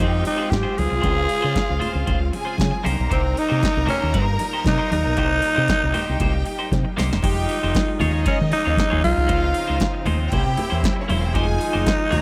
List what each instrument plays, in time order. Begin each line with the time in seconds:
Already playing: string section D#3 G#3 C4 F4, clean electric guitar C4, violin section G4 G5
0.00 fingered electric bass F2, tenor saxophone D#4, clean electric guitar F4 G#4 C5, kick, muted conga
0.11 muted clean electric guitar stroke
0.23 tenor saxophone D#4, muted clean electric guitar stroke, open hi-hat, muted conga
0.37 clean electric guitar C4 F4 G#4 C5
0.50 fingered electric bass G#2, tenor saxophone G4, muted clean electric guitar stroke, kick, snare, closed hi-hat, high conga
0.63 clean electric guitar C4 F4 G#4 C5
0.76 fingered electric bass C#2, string section C#3, violin section F4 F5, tenor saxophone G#4, muted clean electric guitar stroke, open hi-hat, high conga
0.90 fingered electric bass C2, muted clean electric guitar stroke
1.01 fingered electric bass C#2, clean electric guitar C4 F4 G#4 C5, kick, closed hi-hat, muted conga
1.16 muted clean electric guitar stroke
1.28 muted clean electric guitar stroke, open hi-hat
1.42 fingered electric bass C#3, clean electric guitar C4 F4 G#4 C5
1.55 muted clean electric guitar stroke, kick, snare, closed hi-hat, high conga
1.68 fingered electric bass C#2, muted clean electric guitar stroke
1.79 clean electric guitar C4 F4 G#4 C5, open hi-hat, low conga
1.93 fingered electric bass C#2, clean electric guitar C4 F4 G#4 C5
2.06 fingered electric bass C#2, clean electric guitar C4 F4 G#4 C5, kick, closed hi-hat, muted conga, low conga
2.20 muted clean electric guitar stroke
2.32 violin section G#4 G#5, muted clean electric guitar stroke, open hi-hat, muted conga
2.45 clean electric guitar C4 F4 G#4 C5
2.57 fingered electric bass C#3, muted clean electric guitar stroke, kick, closed hi-hat, high conga
2.61 snare
2.71 muted clean electric guitar stroke
2.84 fingered electric bass C2, string section A#2 G3 A#3 D#4, clean electric guitar A#3 D#4 G4 C5, violin section A#4 A#5, open hi-hat, high conga
2.97 fingered electric bass B1, clean electric guitar A#3 D#4 G4 C5
3.09 fingered electric bass C2, clean electric guitar A#3 D#4 G4 C5, tenor saxophone C4, kick, closed hi-hat, muted conga
3.23 muted clean electric guitar stroke
3.34 muted clean electric guitar stroke, open hi-hat
3.39 tenor saxophone D#4
3.49 fingered electric bass C3, clean electric guitar A#3 D#4 G4 C5
3.60 muted clean electric guitar stroke, kick, closed hi-hat, high conga
3.65 snare
3.73 fingered electric bass C2, muted clean electric guitar stroke
3.86 clean electric guitar A#3 D#4 G4 C5, tenor saxophone C#4, open hi-hat, low conga
4.00 fingered electric bass D#2, clean electric guitar A#3 D#4 G4 C5
4.12 fingered electric bass G2, clean electric guitar A#3 D#4 G4 C5, kick, closed hi-hat, muted conga
4.27 muted clean electric guitar stroke
4.39 muted clean electric guitar stroke, open hi-hat, muted conga
4.53 clean electric guitar A#3 D#4 G4 C5
4.64 fingered electric bass C3, tenor saxophone D#4, muted clean electric guitar stroke, kick, snare, closed hi-hat, high conga
4.78 clean electric guitar A#3 D#4 G4 C5
4.91 fingered electric bass D#2, tenor saxophone D#4, muted clean electric guitar stroke, open hi-hat, high conga
5.06 fingered electric bass B1, muted clean electric guitar stroke
5.17 fingered electric bass C2, clean electric guitar A#3 D#4 G4 C5, kick, closed hi-hat, muted conga
5.31 muted clean electric guitar stroke
5.42 muted clean electric guitar stroke, open hi-hat
5.55 fingered electric bass C3, clean electric guitar A#3 D#4 G4 C5
5.68 muted clean electric guitar stroke, kick, snare, closed hi-hat, high conga
5.81 fingered electric bass C2, muted clean electric guitar stroke
5.93 clean electric guitar A#3 D#4 G4 C5, violin section G4 G5, open hi-hat, low conga
6.07 fingered electric bass C2, clean electric guitar A#3 D#4 G4 C5
6.20 fingered electric bass C2, clean electric guitar A#3 D#4 G4 C5, kick, closed hi-hat, muted conga, low conga
6.33 muted clean electric guitar stroke
6.45 muted clean electric guitar stroke, open hi-hat
6.59 clean electric guitar A#3 D#4 G4 C5
6.71 fingered electric bass C3, muted clean electric guitar stroke, kick, snare, closed hi-hat, high conga
6.85 muted clean electric guitar stroke
6.97 fingered electric bass C2, clean electric guitar A#3 D#4 G4 C5, snare, open hi-hat, high conga
7.11 fingered electric bass E1, clean electric guitar A#3 D#4 G4 C5, snare
7.22 fingered electric bass F1, string section D#3 G3 G#3 F4, clean electric guitar G#3 D#4 G4 C5, tenor saxophone D#4, violin section G4 G5, kick, closed hi-hat, crash, muted conga
7.37 muted clean electric guitar stroke
7.49 muted clean electric guitar stroke, open hi-hat
7.63 fingered electric bass F1, clean electric guitar G#3 D#4 G4 C5
7.75 kick, snare, closed hi-hat, high conga
7.88 muted clean electric guitar stroke
8.00 fingered electric bass D#2, string section C#3 F3 D#4, clean electric guitar C#4 F4 G#4 C#5, violin section D#4 D#5, open hi-hat, low conga
8.13 clean electric guitar C#4 F4 G#4 C#5
8.24 clean electric guitar C#4 F4 G#4 C#5, tenor saxophone C#4, kick, closed hi-hat, muted conga
8.39 fingered electric bass D#3, muted clean electric guitar stroke
8.51 tenor saxophone D#4, muted clean electric guitar stroke, open hi-hat, muted conga
8.65 fingered electric bass D#2, clean electric guitar C#4 F4 G#4 C#5
8.77 muted clean electric guitar stroke, kick, snare, closed hi-hat, high conga
8.90 fingered electric bass D#2, clean electric guitar C#4 F4 G#4 C#5
9.02 fingered electric bass B1, tenor saxophone F4, muted clean electric guitar stroke, open hi-hat, high conga
9.16 fingered electric bass C2, muted clean electric guitar stroke
9.27 fingered electric bass C#2, clean electric guitar G#3 D#4 F4 C5, string section C4, violin section F4 F5, kick, closed hi-hat, muted conga
9.42 muted clean electric guitar stroke
9.54 muted clean electric guitar stroke, open hi-hat
9.68 fingered electric bass C#2, clean electric guitar G#3 D#4 F4 C5
9.80 muted clean electric guitar stroke, kick, snare, closed hi-hat, high conga
9.94 muted clean electric guitar stroke
10.05 fingered electric bass D#2, clean electric guitar G#3 D#4 F4 C5, open hi-hat, low conga
10.20 clean electric guitar G#3 D#4 F4 C5
10.31 fingered electric bass C2, string section C#3 A#3 E4, clean electric guitar A#3 C#4 E4 C5, violin section G4 G5, kick, closed hi-hat, muted conga, low conga
10.45 fingered electric bass C3, muted clean electric guitar stroke
10.57 muted clean electric guitar stroke, open hi-hat, muted conga, low conga
10.70 fingered electric bass E2, clean electric guitar A#3 C#4 E4 C5
10.83 muted clean electric guitar stroke, kick, snare, closed hi-hat, high conga
10.96 muted clean electric guitar stroke
11.01 violin section C#4 C#5
11.08 fingered electric bass E1, clean electric guitar A#3 C#4 E4 C5, violin section E4 E5, open hi-hat, high conga
11.19 violin section F4 F5, clean electric guitar C5
11.24 clean electric guitar A#3 C#4 E4, violin section G4 G5
11.34 fingered electric bass F1, string section D#3 F3 G#3 F4, clean electric guitar G#3 D#4 G4 C5, tenor saxophone D#4, violin section G#4 G#5, kick, closed hi-hat, muted conga
11.47 muted clean electric guitar stroke
11.59 muted clean electric guitar stroke, open hi-hat
11.73 fingered electric bass F1, clean electric guitar G#3 D#4 G4 C5
11.87 kick, snare, closed hi-hat, high conga
11.99 muted clean electric guitar stroke
12.10 fingered electric bass D#2, string section C#3 F3 D#4, clean electric guitar A#3 F4 G#4 C#5, violin section A#4 A#5, open hi-hat, low conga